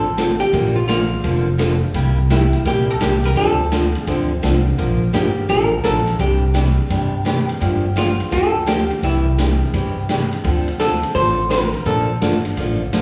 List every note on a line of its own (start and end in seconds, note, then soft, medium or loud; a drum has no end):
0.00 0.39 A1 medium
0.00 0.37 A4 loud
0.17 0.29 D3 medium
0.17 0.30 F3 medium
0.17 0.30 C4 medium
0.17 0.30 D4 medium
0.17 0.30 A4 medium
0.17 snare medium
0.17 hi-hat pedal medium
0.17 ride medium
0.40 0.77 G4 medium
0.40 ride soft
0.53 1.10 A#1 medium
0.53 0.75 D3 medium
0.53 0.76 F3 medium
0.53 0.76 A#3 medium
0.53 0.76 D4 medium
0.53 0.76 A4 medium
0.53 kick soft
0.53 ride medium
0.76 0.87 F4 medium
0.88 1.00 D3 medium
0.88 1.01 F3 medium
0.88 1.01 A#3 medium
0.88 1.01 D4 medium
0.88 1.55 F4 medium
0.88 1.01 A4 medium
0.88 snare medium
0.88 hi-hat pedal medium
0.88 ride medium
1.24 1.81 F1 medium
1.24 1.46 D3 medium
1.24 1.46 F3 medium
1.24 1.47 A#3 medium
1.24 1.47 D4 medium
1.24 1.47 A4 medium
1.24 kick soft
1.24 ride medium
1.58 1.71 D3 medium
1.58 1.71 F3 medium
1.58 1.71 A#3 medium
1.58 1.71 D4 medium
1.58 1.71 A4 medium
1.58 snare medium
1.58 hi-hat pedal medium
1.58 ride medium
1.94 2.52 C2 medium
1.94 2.17 C3 medium
1.94 2.17 G3 medium
1.94 2.17 A#3 medium
1.94 2.17 E4 medium
1.94 2.18 G4 medium
1.94 kick soft
1.94 ride medium
2.30 2.42 C3 medium
2.30 2.42 G3 medium
2.30 2.42 A#3 medium
2.30 2.43 E4 medium
2.30 2.64 E4 medium
2.30 2.43 G4 medium
2.30 snare medium
2.30 hi-hat pedal medium
2.30 ride medium
2.53 ride soft
2.65 2.96 A#1 medium
2.65 2.88 C3 medium
2.65 2.88 G3 medium
2.65 2.88 A#3 medium
2.65 2.88 E4 medium
2.65 2.88 G4 medium
2.65 2.91 G4 medium
2.65 kick soft
2.65 ride medium
2.91 3.02 A4 medium
3.01 3.32 C2 medium
3.01 3.13 C3 medium
3.01 3.13 G3 medium
3.01 3.13 A#3 medium
3.01 3.13 E4 medium
3.01 3.13 G4 medium
3.01 3.25 G4 medium
3.01 snare medium
3.01 hi-hat pedal medium
3.01 ride medium
3.24 3.37 A#4 loud
3.24 ride soft
3.36 3.59 D3 medium
3.36 3.59 F3 medium
3.36 3.59 C4 medium
3.36 3.59 D4 medium
3.36 4.08 A4 medium
3.36 3.59 A4 medium
3.36 kick soft
3.36 ride medium
3.72 3.84 D3 medium
3.72 3.84 F3 medium
3.72 3.84 C4 medium
3.72 3.84 D4 medium
3.72 3.84 A4 medium
3.72 snare medium
3.72 hi-hat pedal medium
3.72 ride medium
3.95 ride soft
4.07 4.38 D2 medium
4.07 4.30 D3 medium
4.07 4.30 F3 medium
4.07 4.30 C4 medium
4.07 4.30 D4 medium
4.07 4.39 G4 medium
4.07 4.30 A4 medium
4.07 kick soft
4.07 ride medium
4.42 4.73 C2 medium
4.42 4.55 D3 medium
4.42 4.55 F3 medium
4.42 4.55 C4 medium
4.42 4.55 D4 medium
4.42 4.55 A4 medium
4.42 snare medium
4.42 hi-hat pedal medium
4.42 ride medium
4.78 5.07 A#1 medium
4.78 5.00 D3 medium
4.78 5.01 F3 medium
4.78 5.01 A#3 medium
4.78 5.01 D4 medium
4.78 5.01 A#4 medium
4.78 kick soft
4.78 ride medium
5.13 5.44 G1 medium
5.13 5.25 D3 medium
5.13 5.25 F3 medium
5.13 5.26 A#3 medium
5.13 5.26 D4 medium
5.13 5.49 G4 medium
5.13 5.26 A#4 medium
5.13 snare medium
5.13 hi-hat pedal medium
5.13 ride medium
5.49 5.79 A1 medium
5.49 5.71 D3 medium
5.49 5.71 F3 medium
5.49 5.72 A#3 medium
5.49 5.72 D4 medium
5.49 5.72 A#4 medium
5.49 5.84 A#4 loud
5.49 kick soft
5.49 ride medium
5.84 6.15 A#1 medium
5.84 5.96 D3 medium
5.84 5.96 F3 medium
5.84 5.96 A#3 medium
5.84 5.96 D4 medium
5.84 6.20 A4 medium
5.84 5.96 A#4 medium
5.84 snare medium
5.84 hi-hat pedal medium
5.84 ride medium
6.07 ride soft
6.19 6.76 C2 medium
6.19 6.42 C3 medium
6.19 6.42 E3 medium
6.19 6.42 D4 medium
6.19 6.42 G4 medium
6.19 6.87 G4 medium
6.19 kick soft
6.19 ride medium
6.54 6.66 C3 medium
6.54 6.67 E3 medium
6.54 6.67 D4 medium
6.54 6.67 G4 medium
6.54 snare medium
6.54 hi-hat pedal medium
6.54 ride medium
6.90 7.47 G1 medium
6.90 7.13 C3 medium
6.90 7.13 E3 medium
6.90 7.13 D4 medium
6.90 7.13 G4 medium
6.90 kick soft
6.90 ride medium
7.25 7.37 C3 medium
7.25 7.38 E3 medium
7.25 7.38 D4 medium
7.25 7.38 G4 medium
7.25 snare medium
7.25 hi-hat pedal medium
7.25 ride medium
7.49 ride soft
7.60 8.18 G1 medium
7.60 7.83 D3 medium
7.60 7.83 F3 medium
7.60 7.84 A#3 medium
7.60 7.84 D4 medium
7.60 7.84 G4 medium
7.60 kick soft
7.60 ride medium
7.96 8.08 D3 medium
7.96 8.08 F3 medium
7.96 8.08 A#3 medium
7.96 8.09 D4 medium
7.96 8.30 F4 medium
7.96 8.09 G4 medium
7.96 snare medium
7.96 hi-hat pedal medium
7.96 ride medium
8.20 ride soft
8.31 8.89 D2 medium
8.31 8.54 D3 medium
8.31 8.54 F3 medium
8.31 8.54 A#3 medium
8.31 8.54 D4 medium
8.31 8.55 G4 medium
8.31 8.68 A4 loud
8.31 kick soft
8.31 ride medium
8.66 8.79 D3 medium
8.66 8.79 F3 medium
8.66 8.79 A#3 medium
8.66 8.79 D4 medium
8.66 8.79 G4 medium
8.66 9.01 G4 medium
8.66 snare medium
8.66 hi-hat pedal medium
8.66 ride medium
8.91 ride soft
9.03 9.60 C2 medium
9.03 9.25 C3 medium
9.03 9.26 E3 medium
9.03 9.26 D4 medium
9.03 9.70 E4 medium
9.03 9.26 G4 medium
9.03 kick soft
9.03 ride medium
9.38 9.50 C3 medium
9.38 9.50 E3 medium
9.38 9.51 D4 medium
9.38 9.51 G4 medium
9.38 snare medium
9.38 hi-hat pedal medium
9.38 ride medium
9.74 10.30 G1 medium
9.74 9.96 C3 medium
9.74 9.96 E3 medium
9.74 9.96 D4 medium
9.74 9.97 G4 medium
9.74 kick soft
9.74 ride medium
10.09 10.21 C3 medium
10.09 10.21 E3 medium
10.09 10.22 D4 medium
10.09 10.22 G4 medium
10.09 snare medium
10.09 hi-hat pedal medium
10.09 ride medium
10.32 ride soft
10.44 11.01 D2 medium
10.44 10.66 D3 medium
10.44 10.67 F3 medium
10.44 10.67 C4 medium
10.44 10.67 D4 medium
10.44 10.67 A4 medium
10.44 kick soft
10.44 ride medium
10.68 ride soft
10.80 10.92 D3 medium
10.80 10.92 F3 medium
10.80 10.92 C4 medium
10.80 10.92 D4 medium
10.80 11.14 A4 medium
10.80 10.92 A4 medium
10.80 snare medium
10.80 hi-hat pedal medium
10.80 ride medium
11.03 ride soft
11.15 11.72 A1 medium
11.15 11.38 D3 medium
11.15 11.38 F3 medium
11.15 11.38 C4 medium
11.15 11.38 D4 medium
11.15 11.38 A4 medium
11.15 11.50 C5 loud
11.15 kick soft
11.15 ride medium
11.49 11.62 D3 medium
11.49 11.62 F3 medium
11.49 11.62 C4 medium
11.49 11.62 D4 medium
11.49 11.63 A4 medium
11.49 11.86 A#4 medium
11.49 snare medium
11.49 hi-hat pedal medium
11.49 ride medium
11.74 ride soft
11.85 12.14 A#1 medium
11.85 12.08 D3 medium
11.85 12.08 F3 medium
11.85 12.08 A#3 medium
11.85 12.09 D4 medium
11.85 12.53 A4 medium
11.85 12.09 A4 medium
11.85 kick soft
11.85 ride medium
12.21 12.52 G1 medium
12.21 12.33 D3 medium
12.21 12.34 F3 medium
12.21 12.34 A#3 medium
12.21 12.34 D4 medium
12.21 12.34 A4 medium
12.21 snare medium
12.21 hi-hat pedal medium
12.21 ride medium
12.45 ride soft
12.57 12.87 A1 medium
12.57 12.80 D3 medium
12.57 12.80 F3 medium
12.57 12.80 A#3 medium
12.57 12.80 D4 medium
12.57 12.80 A4 medium
12.57 kick soft
12.57 ride medium
12.93 13.02 A#1 medium
12.93 13.02 D3 medium
12.93 13.02 F3 medium
12.93 13.02 A#3 medium
12.93 13.02 D4 medium
12.93 13.02 A4 medium
12.93 snare medium
12.93 hi-hat pedal medium
12.93 ride medium